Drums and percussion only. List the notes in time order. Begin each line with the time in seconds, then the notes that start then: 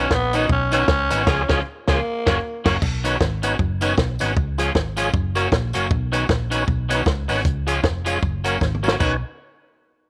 0.11 kick, snare
0.33 closed hi-hat, tambourine
0.49 kick
0.72 closed hi-hat, tambourine
0.88 kick, snare
1.10 closed hi-hat, tambourine
1.27 kick, snare, crash
1.49 kick, snare
1.88 kick, snare
2.27 kick, snare
2.66 kick, snare, crash
2.82 kick, crash
3.05 closed hi-hat, tambourine
3.21 kick, snare
3.43 closed hi-hat, tambourine
3.59 kick
3.81 closed hi-hat, tambourine
3.98 kick, snare
4.19 closed hi-hat, tambourine
4.37 kick
4.58 closed hi-hat, tambourine
4.75 kick, snare
4.97 closed hi-hat, tambourine
5.14 kick
5.35 closed hi-hat, tambourine
5.52 kick, snare
5.73 closed hi-hat, tambourine
5.91 kick
6.13 closed hi-hat, tambourine
6.29 kick, snare
6.52 closed hi-hat, tambourine
6.68 kick
6.90 closed hi-hat, tambourine
7.06 kick, snare
7.29 open hi-hat, tambourine
7.45 kick, hi-hat pedal
7.67 closed hi-hat, tambourine
7.84 kick, snare
8.06 closed hi-hat, tambourine
8.23 kick
8.44 closed hi-hat, tambourine
8.61 kick, snare
8.75 mid tom
8.84 tambourine
8.88 snare
9.00 kick, crash, tambourine